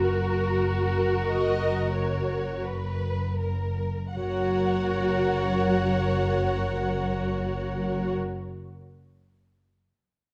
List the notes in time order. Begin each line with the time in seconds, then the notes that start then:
Already playing: F#1 F#2 F#4 A#4
1.25 D#5
1.96 C#5
2.65 B4
3.41 A#4
4.15 F#1 F#2 F#4 A#4 C#5 F#5